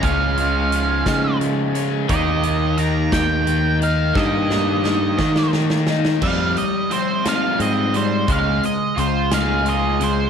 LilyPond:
<<
  \new Staff \with { instrumentName = "Lead electric guitar" } { \time 6/8 \key f \minor \tempo 4. = 58 f''2 r4 | ees''4 bes''8 g''4 f''8 | ees''2 r4 | f''8 ees''8 c''8 f''8 ees''8 c''8 |
f''8 ees''8 c''8 f''8 ees''8 c''8 | }
  \new Staff \with { instrumentName = "Overdriven electric guitar" } { \time 6/8 \key f \minor <aes des' f'>2. | <ees bes ees' g'>2. | <ees bes ees' g'>2. | g4 c'8 f'8 c'8 g8 |
aes4 f'8 aes'8 f'8 aes8 | }
  \new Staff \with { instrumentName = "Overdriven electric guitar" } { \clef bass \time 6/8 \key f \minor des8 aes8 f8 aes8 f8 des'8 | ees8 bes8 ees8 bes8 ees8 ees'8 | ees8 bes8 ees8 bes8 ees8 ees'8 | <f g c'>8 <f g>8 <f g>8 <f g c'>4 <f g>8 |
<des aes des'>8 <des aes>8 <des aes>8 <des aes des'>4 <des aes>8 | }
  \new Staff \with { instrumentName = "Picked electric bass" } { \clef bass \time 6/8 \key f \minor des,4. des4. | ees,4. ees,4. | g,4. ees4. | f,8 r4. aes,4 |
des,8 r8 des,2 | }
  \new DrumStaff \with { instrumentName = "Drums" } \drummode { \time 6/8 <hh bd>8 hh8 hh8 <hh bd sn>8 hh8 hh8 | <hh bd>8 hh8 hh8 <hh bd sn>8 hh8 hh8 | <bd sn>8 sn8 sn8 <bd sn>16 sn16 sn16 sn16 sn16 sn16 | <cymc bd>8 hh8 hh8 <hh sn>8 hh8 hh8 |
<hh bd>8 hh8 hh8 <hh sn>8 hh8 hh8 | }
>>